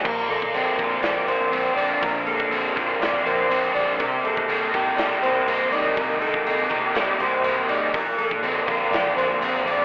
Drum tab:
CC |x---------------|----------------|----------------|----------------|
HH |--o-o-o-o-o-o-o-|o-o-o-o-o-o-o-o-|o-o-o-o-o-o-o-o-|o-o-o-o-o-o-o-o-|
SD |--------o-------|--------o-------|--------o-------|--------o-------|
BD |o--o--o---------|o--o--o---------|o--o--o---------|o--o--o---------|

CC |----------------|
HH |o-o-o-o-o-o-o-o-|
SD |--------o-------|
BD |o--o--o---------|